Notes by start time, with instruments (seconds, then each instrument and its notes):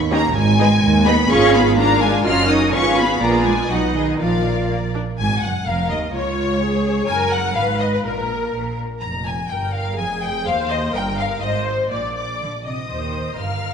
Already playing: double bass section D#2
0.11 cello section A#3, viola section C#4 D#4, violin section G4 D#5 A#5
0.35 double bass section G#1, cello section G#3, violin section G#5
0.59 viola section B3 D#4, violin section G#4 D#5
0.83 double bass section D#2
1.06 viola section B3 D#4, cello section B3, violin section G#4 D#5 B5
1.30 double bass section G#1, cello section C#4, viola section F4 G#4, violin section G#4 F5 C#6
1.54 cello section B3, violin section B5
1.77 cello section A#3, viola section D4 F4, violin section A#4 F5 A#5
2.01 cello section G#3, violin section G#5
2.25 double bass section F#1, viola section C#4 F#4, cello section F4, violin section A#4 D#5 F6
2.49 cello section D#4, violin section D#6
2.73 double bass section G#1, viola section B3 F4, cello section C#4, violin section G#4 F5 C#6
2.97 cello section B3, violin section B5
3.21 double bass section A#1, cello section A#3, viola section B3 F4, violin section G#4 D5 A#5
3.46 cello section G#3, violin section G#5
3.69 double bass section B1, cello section F#3, viola section B3 D#4, violin section F#4 D#5 F#5
3.95 cello section D#3, violin section G#4 D#5
4.20 double bass section A#1, cello section F3, viola section F3 F4, violin section A#4 D5 F5
4.70 viola section A#3
4.94 viola section D4
5.18 double bass section G#1, cello section G#2, violin section G#5
5.43 double bass section F#1, cello section F#2, violin section F#5
5.65 double bass section F1, cello section F2, viola section A#4, violin section F5
5.90 cello section D#2, double bass section D#2, violin section D#5
6.13 double bass section C#2, cello section C#2, viola section F4, violin section C#5
6.60 viola section G#4
7.08 double bass section F#1, cello section F#2, viola section A#4, violin section G#5
7.31 violin section F#5
7.55 double bass section G#1, cello section G#2, viola section B4, violin section F5
7.80 violin section D#5
7.93 violin section B4
8.04 double bass section A#1, cello section A#2, viola section A#4, violin section A#4
8.54 double bass section A#1, cello section A#2
9.01 double bass section F1, cello section F2, violin section A#5
9.25 violin section G#5
9.50 double bass section G1, cello section G2, viola section A#4, violin section G5
9.75 violin section F5
9.98 double bass section F1, cello section F2, viola section G#4, violin section G#5
10.23 violin section G5
10.46 cello section D#2, double bass section D#2, viola section C5, violin section F5
10.70 violin section D#5
10.95 double bass section G1, cello section G2, viola section A#4, violin section G5
11.18 violin section F5
11.42 double bass section G#1, cello section G#2, viola section C5, violin section D#5
11.67 violin section C5
11.90 double bass section A#1, cello section A#2, violin section D5, viola section D5
12.16 violin section D5 D6
12.42 cello section D3
12.66 cello section C3, violin section D#5 D#6
12.90 double bass section D#2, cello section D#3, viola section C5
13.38 double bass section G1, cello section G2, viola section A#4, violin section F5 F6